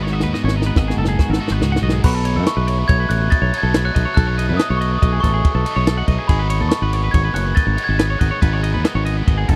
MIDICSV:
0, 0, Header, 1, 7, 480
1, 0, Start_track
1, 0, Tempo, 425834
1, 2295, Time_signature, 5, 2, 24, 8
1, 10775, End_track
2, 0, Start_track
2, 0, Title_t, "Glockenspiel"
2, 0, Program_c, 0, 9
2, 2301, Note_on_c, 0, 83, 106
2, 2783, Note_on_c, 0, 85, 98
2, 2793, Note_off_c, 0, 83, 0
2, 3243, Note_on_c, 0, 92, 110
2, 3273, Note_off_c, 0, 85, 0
2, 3483, Note_on_c, 0, 90, 102
2, 3496, Note_off_c, 0, 92, 0
2, 3594, Note_off_c, 0, 90, 0
2, 3723, Note_on_c, 0, 93, 115
2, 4037, Note_on_c, 0, 92, 108
2, 4059, Note_off_c, 0, 93, 0
2, 4343, Note_off_c, 0, 92, 0
2, 4343, Note_on_c, 0, 90, 107
2, 4657, Note_off_c, 0, 90, 0
2, 4670, Note_on_c, 0, 90, 115
2, 5149, Note_on_c, 0, 87, 101
2, 5177, Note_off_c, 0, 90, 0
2, 5376, Note_on_c, 0, 85, 97
2, 5410, Note_off_c, 0, 87, 0
2, 5617, Note_off_c, 0, 85, 0
2, 5620, Note_on_c, 0, 87, 102
2, 5866, Note_on_c, 0, 85, 107
2, 5885, Note_off_c, 0, 87, 0
2, 6795, Note_off_c, 0, 85, 0
2, 7074, Note_on_c, 0, 83, 94
2, 7539, Note_on_c, 0, 85, 85
2, 7579, Note_off_c, 0, 83, 0
2, 8018, Note_on_c, 0, 92, 101
2, 8051, Note_off_c, 0, 85, 0
2, 8134, Note_off_c, 0, 92, 0
2, 8275, Note_on_c, 0, 90, 92
2, 8387, Note_off_c, 0, 90, 0
2, 8509, Note_on_c, 0, 93, 103
2, 8837, Note_on_c, 0, 92, 103
2, 8851, Note_off_c, 0, 93, 0
2, 9234, Note_on_c, 0, 90, 86
2, 9258, Note_off_c, 0, 92, 0
2, 10775, Note_off_c, 0, 90, 0
2, 10775, End_track
3, 0, Start_track
3, 0, Title_t, "Clean electric guitar"
3, 0, Program_c, 1, 27
3, 28, Note_on_c, 1, 73, 80
3, 147, Note_off_c, 1, 73, 0
3, 147, Note_on_c, 1, 75, 87
3, 260, Note_off_c, 1, 75, 0
3, 265, Note_on_c, 1, 71, 82
3, 379, Note_off_c, 1, 71, 0
3, 384, Note_on_c, 1, 75, 83
3, 499, Note_off_c, 1, 75, 0
3, 505, Note_on_c, 1, 73, 70
3, 623, Note_off_c, 1, 73, 0
3, 623, Note_on_c, 1, 75, 76
3, 738, Note_off_c, 1, 75, 0
3, 749, Note_on_c, 1, 71, 66
3, 871, Note_off_c, 1, 71, 0
3, 871, Note_on_c, 1, 75, 82
3, 982, Note_off_c, 1, 75, 0
3, 993, Note_on_c, 1, 68, 67
3, 1103, Note_off_c, 1, 68, 0
3, 1107, Note_on_c, 1, 69, 73
3, 1219, Note_off_c, 1, 69, 0
3, 1224, Note_on_c, 1, 68, 80
3, 1470, Note_off_c, 1, 68, 0
3, 1470, Note_on_c, 1, 69, 80
3, 1710, Note_off_c, 1, 69, 0
3, 1710, Note_on_c, 1, 71, 74
3, 1823, Note_off_c, 1, 71, 0
3, 1823, Note_on_c, 1, 68, 79
3, 1939, Note_off_c, 1, 68, 0
3, 1941, Note_on_c, 1, 78, 79
3, 2057, Note_off_c, 1, 78, 0
3, 2062, Note_on_c, 1, 75, 80
3, 2177, Note_on_c, 1, 68, 77
3, 2178, Note_off_c, 1, 75, 0
3, 2295, Note_off_c, 1, 68, 0
3, 2300, Note_on_c, 1, 66, 91
3, 2416, Note_off_c, 1, 66, 0
3, 2416, Note_on_c, 1, 69, 75
3, 2535, Note_off_c, 1, 69, 0
3, 2539, Note_on_c, 1, 73, 78
3, 2657, Note_off_c, 1, 73, 0
3, 2662, Note_on_c, 1, 69, 76
3, 2893, Note_on_c, 1, 71, 81
3, 2899, Note_off_c, 1, 69, 0
3, 3013, Note_off_c, 1, 71, 0
3, 3013, Note_on_c, 1, 73, 82
3, 3138, Note_off_c, 1, 73, 0
3, 3138, Note_on_c, 1, 71, 73
3, 3254, Note_off_c, 1, 71, 0
3, 3259, Note_on_c, 1, 73, 89
3, 3376, Note_off_c, 1, 73, 0
3, 3380, Note_on_c, 1, 71, 73
3, 3503, Note_off_c, 1, 71, 0
3, 3503, Note_on_c, 1, 73, 81
3, 3621, Note_off_c, 1, 73, 0
3, 3621, Note_on_c, 1, 71, 75
3, 3732, Note_off_c, 1, 71, 0
3, 3732, Note_on_c, 1, 75, 97
3, 3849, Note_off_c, 1, 75, 0
3, 3853, Note_on_c, 1, 73, 79
3, 4088, Note_off_c, 1, 73, 0
3, 4092, Note_on_c, 1, 69, 77
3, 4221, Note_off_c, 1, 69, 0
3, 4221, Note_on_c, 1, 71, 80
3, 4337, Note_on_c, 1, 73, 80
3, 4338, Note_off_c, 1, 71, 0
3, 4446, Note_off_c, 1, 73, 0
3, 4450, Note_on_c, 1, 75, 80
3, 4565, Note_off_c, 1, 75, 0
3, 4569, Note_on_c, 1, 73, 81
3, 4692, Note_off_c, 1, 73, 0
3, 4696, Note_on_c, 1, 69, 97
3, 4813, Note_on_c, 1, 73, 78
3, 4815, Note_off_c, 1, 69, 0
3, 4934, Note_off_c, 1, 73, 0
3, 4939, Note_on_c, 1, 75, 88
3, 5057, Note_off_c, 1, 75, 0
3, 5062, Note_on_c, 1, 71, 73
3, 5176, Note_off_c, 1, 71, 0
3, 5176, Note_on_c, 1, 75, 94
3, 5295, Note_off_c, 1, 75, 0
3, 5302, Note_on_c, 1, 73, 73
3, 5417, Note_off_c, 1, 73, 0
3, 5421, Note_on_c, 1, 75, 86
3, 5541, Note_off_c, 1, 75, 0
3, 5541, Note_on_c, 1, 71, 77
3, 5656, Note_off_c, 1, 71, 0
3, 5661, Note_on_c, 1, 75, 85
3, 5777, Note_on_c, 1, 68, 72
3, 5778, Note_off_c, 1, 75, 0
3, 5889, Note_off_c, 1, 68, 0
3, 5894, Note_on_c, 1, 69, 80
3, 6012, Note_off_c, 1, 69, 0
3, 6016, Note_on_c, 1, 68, 79
3, 6250, Note_off_c, 1, 68, 0
3, 6255, Note_on_c, 1, 69, 81
3, 6492, Note_on_c, 1, 73, 84
3, 6495, Note_off_c, 1, 69, 0
3, 6612, Note_on_c, 1, 69, 78
3, 6613, Note_off_c, 1, 73, 0
3, 6733, Note_off_c, 1, 69, 0
3, 6734, Note_on_c, 1, 78, 80
3, 6847, Note_off_c, 1, 78, 0
3, 6851, Note_on_c, 1, 75, 75
3, 6971, Note_on_c, 1, 68, 78
3, 6973, Note_off_c, 1, 75, 0
3, 7079, Note_off_c, 1, 68, 0
3, 7093, Note_on_c, 1, 68, 100
3, 7204, Note_on_c, 1, 71, 84
3, 7213, Note_off_c, 1, 68, 0
3, 7320, Note_off_c, 1, 71, 0
3, 7324, Note_on_c, 1, 73, 91
3, 7449, Note_off_c, 1, 73, 0
3, 7451, Note_on_c, 1, 69, 77
3, 7692, Note_on_c, 1, 71, 79
3, 7693, Note_off_c, 1, 69, 0
3, 7814, Note_off_c, 1, 71, 0
3, 7814, Note_on_c, 1, 73, 87
3, 7930, Note_off_c, 1, 73, 0
3, 7934, Note_on_c, 1, 71, 75
3, 8048, Note_off_c, 1, 71, 0
3, 8053, Note_on_c, 1, 73, 89
3, 8163, Note_off_c, 1, 73, 0
3, 8167, Note_on_c, 1, 71, 76
3, 8279, Note_off_c, 1, 71, 0
3, 8284, Note_on_c, 1, 73, 73
3, 8405, Note_off_c, 1, 73, 0
3, 8405, Note_on_c, 1, 71, 77
3, 8521, Note_off_c, 1, 71, 0
3, 8521, Note_on_c, 1, 75, 88
3, 8644, Note_off_c, 1, 75, 0
3, 8644, Note_on_c, 1, 73, 80
3, 8889, Note_off_c, 1, 73, 0
3, 8889, Note_on_c, 1, 69, 80
3, 9002, Note_off_c, 1, 69, 0
3, 9007, Note_on_c, 1, 71, 76
3, 9127, Note_off_c, 1, 71, 0
3, 9132, Note_on_c, 1, 73, 81
3, 9245, Note_off_c, 1, 73, 0
3, 9250, Note_on_c, 1, 75, 82
3, 9362, Note_off_c, 1, 75, 0
3, 9366, Note_on_c, 1, 73, 78
3, 9485, Note_off_c, 1, 73, 0
3, 9489, Note_on_c, 1, 71, 98
3, 9613, Note_off_c, 1, 71, 0
3, 9613, Note_on_c, 1, 73, 78
3, 9728, Note_off_c, 1, 73, 0
3, 9732, Note_on_c, 1, 75, 82
3, 9846, Note_off_c, 1, 75, 0
3, 9850, Note_on_c, 1, 71, 73
3, 9969, Note_off_c, 1, 71, 0
3, 9969, Note_on_c, 1, 75, 91
3, 10086, Note_off_c, 1, 75, 0
3, 10091, Note_on_c, 1, 73, 81
3, 10202, Note_off_c, 1, 73, 0
3, 10207, Note_on_c, 1, 75, 82
3, 10340, Note_off_c, 1, 75, 0
3, 10340, Note_on_c, 1, 71, 73
3, 10454, Note_off_c, 1, 71, 0
3, 10454, Note_on_c, 1, 75, 85
3, 10568, Note_on_c, 1, 68, 69
3, 10574, Note_off_c, 1, 75, 0
3, 10689, Note_off_c, 1, 68, 0
3, 10689, Note_on_c, 1, 69, 76
3, 10775, Note_off_c, 1, 69, 0
3, 10775, End_track
4, 0, Start_track
4, 0, Title_t, "Clean electric guitar"
4, 0, Program_c, 2, 27
4, 0, Note_on_c, 2, 44, 77
4, 0, Note_on_c, 2, 59, 73
4, 16, Note_on_c, 2, 66, 63
4, 125, Note_off_c, 2, 66, 0
4, 139, Note_on_c, 2, 66, 72
4, 378, Note_off_c, 2, 59, 0
4, 382, Note_on_c, 2, 59, 68
4, 641, Note_on_c, 2, 63, 61
4, 857, Note_off_c, 2, 66, 0
4, 876, Note_on_c, 2, 66, 75
4, 1105, Note_off_c, 2, 66, 0
4, 1119, Note_on_c, 2, 69, 61
4, 1346, Note_off_c, 2, 69, 0
4, 1351, Note_on_c, 2, 66, 71
4, 1583, Note_off_c, 2, 66, 0
4, 1594, Note_on_c, 2, 66, 64
4, 1818, Note_off_c, 2, 44, 0
4, 1824, Note_off_c, 2, 66, 0
4, 1832, Note_on_c, 2, 44, 73
4, 1841, Note_on_c, 2, 66, 63
4, 2064, Note_off_c, 2, 66, 0
4, 2078, Note_on_c, 2, 66, 70
4, 2271, Note_off_c, 2, 59, 0
4, 2275, Note_off_c, 2, 44, 0
4, 2278, Note_off_c, 2, 66, 0
4, 2280, Note_off_c, 2, 63, 0
4, 10775, End_track
5, 0, Start_track
5, 0, Title_t, "Overdriven electric guitar"
5, 0, Program_c, 3, 29
5, 0, Note_on_c, 3, 44, 85
5, 0, Note_on_c, 3, 51, 96
5, 0, Note_on_c, 3, 56, 92
5, 0, Note_on_c, 3, 59, 93
5, 0, Note_on_c, 3, 63, 100
5, 1558, Note_off_c, 3, 44, 0
5, 1561, Note_off_c, 3, 63, 0
5, 1564, Note_off_c, 3, 51, 0
5, 1565, Note_off_c, 3, 56, 0
5, 1569, Note_off_c, 3, 59, 0
5, 1574, Note_on_c, 3, 63, 95
5, 1582, Note_on_c, 3, 59, 86
5, 1590, Note_on_c, 3, 56, 79
5, 1597, Note_on_c, 3, 51, 80
5, 1602, Note_on_c, 3, 44, 67
5, 2281, Note_off_c, 3, 63, 0
5, 2284, Note_off_c, 3, 51, 0
5, 2284, Note_off_c, 3, 59, 0
5, 2288, Note_off_c, 3, 56, 0
5, 2288, Note_on_c, 3, 47, 90
5, 2294, Note_off_c, 3, 44, 0
5, 2296, Note_on_c, 3, 54, 86
5, 2308, Note_on_c, 3, 57, 116
5, 2314, Note_on_c, 3, 63, 100
5, 3957, Note_off_c, 3, 47, 0
5, 3967, Note_off_c, 3, 57, 0
5, 3976, Note_off_c, 3, 63, 0
5, 3980, Note_on_c, 3, 63, 85
5, 3999, Note_on_c, 3, 57, 87
5, 4001, Note_off_c, 3, 54, 0
5, 4006, Note_on_c, 3, 54, 85
5, 4010, Note_on_c, 3, 47, 69
5, 4687, Note_off_c, 3, 47, 0
5, 4693, Note_off_c, 3, 57, 0
5, 4701, Note_on_c, 3, 47, 90
5, 4706, Note_off_c, 3, 54, 0
5, 4710, Note_on_c, 3, 54, 99
5, 4720, Note_off_c, 3, 63, 0
5, 4720, Note_on_c, 3, 57, 113
5, 4724, Note_on_c, 3, 63, 100
5, 6363, Note_off_c, 3, 47, 0
5, 6364, Note_off_c, 3, 63, 0
5, 6365, Note_off_c, 3, 57, 0
5, 6368, Note_on_c, 3, 63, 83
5, 6378, Note_on_c, 3, 57, 78
5, 6383, Note_off_c, 3, 54, 0
5, 6387, Note_on_c, 3, 54, 76
5, 6399, Note_on_c, 3, 47, 75
5, 7082, Note_off_c, 3, 57, 0
5, 7089, Note_on_c, 3, 44, 100
5, 7091, Note_off_c, 3, 47, 0
5, 7095, Note_off_c, 3, 54, 0
5, 7095, Note_on_c, 3, 51, 101
5, 7099, Note_on_c, 3, 56, 89
5, 7105, Note_on_c, 3, 59, 112
5, 7111, Note_off_c, 3, 63, 0
5, 7115, Note_on_c, 3, 63, 115
5, 8756, Note_off_c, 3, 63, 0
5, 8757, Note_off_c, 3, 44, 0
5, 8760, Note_off_c, 3, 51, 0
5, 8760, Note_off_c, 3, 59, 0
5, 8761, Note_on_c, 3, 63, 83
5, 8762, Note_off_c, 3, 56, 0
5, 8765, Note_on_c, 3, 59, 85
5, 8774, Note_on_c, 3, 56, 86
5, 8780, Note_on_c, 3, 51, 87
5, 8789, Note_on_c, 3, 44, 75
5, 9472, Note_off_c, 3, 44, 0
5, 9479, Note_off_c, 3, 56, 0
5, 9482, Note_off_c, 3, 51, 0
5, 9485, Note_on_c, 3, 44, 93
5, 9495, Note_on_c, 3, 51, 91
5, 9500, Note_on_c, 3, 56, 97
5, 9503, Note_off_c, 3, 59, 0
5, 9508, Note_off_c, 3, 63, 0
5, 9508, Note_on_c, 3, 59, 112
5, 9512, Note_on_c, 3, 63, 98
5, 10775, Note_off_c, 3, 44, 0
5, 10775, Note_off_c, 3, 51, 0
5, 10775, Note_off_c, 3, 56, 0
5, 10775, Note_off_c, 3, 59, 0
5, 10775, Note_off_c, 3, 63, 0
5, 10775, End_track
6, 0, Start_track
6, 0, Title_t, "Fingered electric bass"
6, 0, Program_c, 4, 33
6, 0, Note_on_c, 4, 32, 115
6, 260, Note_on_c, 4, 39, 82
6, 277, Note_off_c, 4, 32, 0
6, 355, Note_off_c, 4, 39, 0
6, 495, Note_on_c, 4, 32, 100
6, 787, Note_off_c, 4, 32, 0
6, 860, Note_on_c, 4, 32, 104
6, 1053, Note_off_c, 4, 32, 0
6, 1093, Note_on_c, 4, 30, 95
6, 1288, Note_off_c, 4, 30, 0
6, 1459, Note_on_c, 4, 32, 93
6, 1555, Note_off_c, 4, 32, 0
6, 1694, Note_on_c, 4, 32, 88
6, 1792, Note_off_c, 4, 32, 0
6, 1812, Note_on_c, 4, 37, 88
6, 2029, Note_off_c, 4, 37, 0
6, 2053, Note_on_c, 4, 35, 85
6, 2270, Note_off_c, 4, 35, 0
6, 2302, Note_on_c, 4, 35, 107
6, 2657, Note_on_c, 4, 42, 83
6, 2674, Note_off_c, 4, 35, 0
6, 2753, Note_off_c, 4, 42, 0
6, 2893, Note_on_c, 4, 35, 100
6, 3186, Note_off_c, 4, 35, 0
6, 3260, Note_on_c, 4, 35, 101
6, 3453, Note_off_c, 4, 35, 0
6, 3491, Note_on_c, 4, 33, 102
6, 3687, Note_off_c, 4, 33, 0
6, 3851, Note_on_c, 4, 35, 102
6, 3950, Note_off_c, 4, 35, 0
6, 4093, Note_on_c, 4, 35, 95
6, 4386, Note_off_c, 4, 35, 0
6, 4462, Note_on_c, 4, 35, 104
6, 4557, Note_off_c, 4, 35, 0
6, 4701, Note_on_c, 4, 35, 117
6, 5064, Note_on_c, 4, 42, 91
6, 5081, Note_off_c, 4, 35, 0
6, 5158, Note_off_c, 4, 42, 0
6, 5300, Note_on_c, 4, 35, 106
6, 5590, Note_off_c, 4, 35, 0
6, 5664, Note_on_c, 4, 35, 100
6, 5855, Note_off_c, 4, 35, 0
6, 5900, Note_on_c, 4, 33, 95
6, 6093, Note_off_c, 4, 33, 0
6, 6252, Note_on_c, 4, 35, 97
6, 6350, Note_off_c, 4, 35, 0
6, 6496, Note_on_c, 4, 35, 94
6, 6787, Note_off_c, 4, 35, 0
6, 6850, Note_on_c, 4, 35, 103
6, 6949, Note_off_c, 4, 35, 0
6, 7091, Note_on_c, 4, 32, 114
6, 7447, Note_on_c, 4, 39, 88
6, 7463, Note_off_c, 4, 32, 0
6, 7547, Note_off_c, 4, 39, 0
6, 7685, Note_on_c, 4, 32, 105
6, 7981, Note_off_c, 4, 32, 0
6, 8045, Note_on_c, 4, 32, 111
6, 8243, Note_off_c, 4, 32, 0
6, 8272, Note_on_c, 4, 30, 90
6, 8476, Note_off_c, 4, 30, 0
6, 8640, Note_on_c, 4, 32, 101
6, 8743, Note_off_c, 4, 32, 0
6, 8890, Note_on_c, 4, 32, 98
6, 9184, Note_off_c, 4, 32, 0
6, 9252, Note_on_c, 4, 32, 110
6, 9350, Note_off_c, 4, 32, 0
6, 9496, Note_on_c, 4, 32, 116
6, 9852, Note_on_c, 4, 39, 85
6, 9869, Note_off_c, 4, 32, 0
6, 9950, Note_off_c, 4, 39, 0
6, 10087, Note_on_c, 4, 32, 106
6, 10383, Note_off_c, 4, 32, 0
6, 10453, Note_on_c, 4, 32, 99
6, 10649, Note_off_c, 4, 32, 0
6, 10696, Note_on_c, 4, 30, 99
6, 10775, Note_off_c, 4, 30, 0
6, 10775, End_track
7, 0, Start_track
7, 0, Title_t, "Drums"
7, 75, Note_on_c, 9, 38, 54
7, 187, Note_off_c, 9, 38, 0
7, 226, Note_on_c, 9, 38, 77
7, 339, Note_off_c, 9, 38, 0
7, 386, Note_on_c, 9, 38, 61
7, 498, Note_off_c, 9, 38, 0
7, 542, Note_on_c, 9, 38, 77
7, 655, Note_off_c, 9, 38, 0
7, 695, Note_on_c, 9, 38, 75
7, 808, Note_off_c, 9, 38, 0
7, 856, Note_on_c, 9, 38, 89
7, 860, Note_on_c, 9, 36, 120
7, 968, Note_off_c, 9, 38, 0
7, 973, Note_off_c, 9, 36, 0
7, 1014, Note_on_c, 9, 38, 80
7, 1127, Note_off_c, 9, 38, 0
7, 1180, Note_on_c, 9, 38, 86
7, 1293, Note_off_c, 9, 38, 0
7, 1339, Note_on_c, 9, 38, 79
7, 1343, Note_on_c, 9, 36, 104
7, 1452, Note_off_c, 9, 38, 0
7, 1455, Note_off_c, 9, 36, 0
7, 1501, Note_on_c, 9, 38, 92
7, 1613, Note_off_c, 9, 38, 0
7, 1665, Note_on_c, 9, 38, 85
7, 1777, Note_off_c, 9, 38, 0
7, 1820, Note_on_c, 9, 38, 95
7, 1933, Note_off_c, 9, 38, 0
7, 1983, Note_on_c, 9, 38, 91
7, 2096, Note_off_c, 9, 38, 0
7, 2133, Note_on_c, 9, 38, 99
7, 2245, Note_off_c, 9, 38, 0
7, 2296, Note_on_c, 9, 49, 125
7, 2302, Note_on_c, 9, 36, 122
7, 2409, Note_off_c, 9, 49, 0
7, 2414, Note_off_c, 9, 36, 0
7, 2536, Note_on_c, 9, 51, 91
7, 2649, Note_off_c, 9, 51, 0
7, 2778, Note_on_c, 9, 51, 106
7, 2780, Note_on_c, 9, 38, 108
7, 2890, Note_off_c, 9, 51, 0
7, 2893, Note_off_c, 9, 38, 0
7, 3018, Note_on_c, 9, 51, 85
7, 3131, Note_off_c, 9, 51, 0
7, 3256, Note_on_c, 9, 51, 119
7, 3261, Note_on_c, 9, 36, 124
7, 3369, Note_off_c, 9, 51, 0
7, 3373, Note_off_c, 9, 36, 0
7, 3499, Note_on_c, 9, 51, 91
7, 3612, Note_off_c, 9, 51, 0
7, 3739, Note_on_c, 9, 51, 107
7, 3743, Note_on_c, 9, 36, 101
7, 3852, Note_off_c, 9, 51, 0
7, 3855, Note_off_c, 9, 36, 0
7, 3985, Note_on_c, 9, 51, 90
7, 4098, Note_off_c, 9, 51, 0
7, 4218, Note_on_c, 9, 51, 122
7, 4220, Note_on_c, 9, 38, 111
7, 4330, Note_off_c, 9, 51, 0
7, 4333, Note_off_c, 9, 38, 0
7, 4462, Note_on_c, 9, 36, 79
7, 4464, Note_on_c, 9, 51, 81
7, 4575, Note_off_c, 9, 36, 0
7, 4577, Note_off_c, 9, 51, 0
7, 4703, Note_on_c, 9, 36, 121
7, 4704, Note_on_c, 9, 51, 108
7, 4816, Note_off_c, 9, 36, 0
7, 4817, Note_off_c, 9, 51, 0
7, 4946, Note_on_c, 9, 51, 89
7, 4948, Note_on_c, 9, 38, 42
7, 5059, Note_off_c, 9, 51, 0
7, 5061, Note_off_c, 9, 38, 0
7, 5177, Note_on_c, 9, 51, 99
7, 5179, Note_on_c, 9, 38, 123
7, 5290, Note_off_c, 9, 51, 0
7, 5292, Note_off_c, 9, 38, 0
7, 5427, Note_on_c, 9, 51, 82
7, 5540, Note_off_c, 9, 51, 0
7, 5664, Note_on_c, 9, 36, 121
7, 5666, Note_on_c, 9, 51, 107
7, 5777, Note_off_c, 9, 36, 0
7, 5779, Note_off_c, 9, 51, 0
7, 5902, Note_on_c, 9, 36, 81
7, 5905, Note_on_c, 9, 51, 75
7, 5908, Note_on_c, 9, 38, 36
7, 6015, Note_off_c, 9, 36, 0
7, 6018, Note_off_c, 9, 51, 0
7, 6020, Note_off_c, 9, 38, 0
7, 6138, Note_on_c, 9, 51, 102
7, 6141, Note_on_c, 9, 36, 112
7, 6251, Note_off_c, 9, 51, 0
7, 6254, Note_off_c, 9, 36, 0
7, 6380, Note_on_c, 9, 51, 85
7, 6493, Note_off_c, 9, 51, 0
7, 6616, Note_on_c, 9, 51, 114
7, 6619, Note_on_c, 9, 38, 115
7, 6729, Note_off_c, 9, 51, 0
7, 6731, Note_off_c, 9, 38, 0
7, 6849, Note_on_c, 9, 51, 80
7, 6853, Note_on_c, 9, 36, 86
7, 6962, Note_off_c, 9, 51, 0
7, 6966, Note_off_c, 9, 36, 0
7, 7089, Note_on_c, 9, 51, 115
7, 7092, Note_on_c, 9, 36, 115
7, 7202, Note_off_c, 9, 51, 0
7, 7205, Note_off_c, 9, 36, 0
7, 7327, Note_on_c, 9, 51, 100
7, 7439, Note_off_c, 9, 51, 0
7, 7567, Note_on_c, 9, 51, 115
7, 7569, Note_on_c, 9, 38, 114
7, 7680, Note_off_c, 9, 51, 0
7, 7682, Note_off_c, 9, 38, 0
7, 7810, Note_on_c, 9, 51, 95
7, 7923, Note_off_c, 9, 51, 0
7, 8048, Note_on_c, 9, 51, 117
7, 8051, Note_on_c, 9, 36, 124
7, 8161, Note_off_c, 9, 51, 0
7, 8164, Note_off_c, 9, 36, 0
7, 8295, Note_on_c, 9, 51, 95
7, 8297, Note_on_c, 9, 38, 36
7, 8408, Note_off_c, 9, 51, 0
7, 8410, Note_off_c, 9, 38, 0
7, 8532, Note_on_c, 9, 36, 105
7, 8532, Note_on_c, 9, 51, 109
7, 8644, Note_off_c, 9, 36, 0
7, 8645, Note_off_c, 9, 51, 0
7, 8770, Note_on_c, 9, 51, 83
7, 8882, Note_off_c, 9, 51, 0
7, 9010, Note_on_c, 9, 51, 113
7, 9012, Note_on_c, 9, 38, 119
7, 9122, Note_off_c, 9, 51, 0
7, 9125, Note_off_c, 9, 38, 0
7, 9254, Note_on_c, 9, 36, 83
7, 9254, Note_on_c, 9, 51, 82
7, 9366, Note_off_c, 9, 36, 0
7, 9366, Note_off_c, 9, 51, 0
7, 9494, Note_on_c, 9, 36, 116
7, 9496, Note_on_c, 9, 51, 108
7, 9607, Note_off_c, 9, 36, 0
7, 9609, Note_off_c, 9, 51, 0
7, 9735, Note_on_c, 9, 51, 84
7, 9848, Note_off_c, 9, 51, 0
7, 9972, Note_on_c, 9, 51, 105
7, 9974, Note_on_c, 9, 38, 123
7, 10085, Note_off_c, 9, 51, 0
7, 10087, Note_off_c, 9, 38, 0
7, 10216, Note_on_c, 9, 51, 83
7, 10219, Note_on_c, 9, 38, 40
7, 10329, Note_off_c, 9, 51, 0
7, 10331, Note_off_c, 9, 38, 0
7, 10455, Note_on_c, 9, 51, 101
7, 10456, Note_on_c, 9, 36, 117
7, 10568, Note_off_c, 9, 51, 0
7, 10569, Note_off_c, 9, 36, 0
7, 10693, Note_on_c, 9, 51, 85
7, 10696, Note_on_c, 9, 36, 90
7, 10775, Note_off_c, 9, 36, 0
7, 10775, Note_off_c, 9, 51, 0
7, 10775, End_track
0, 0, End_of_file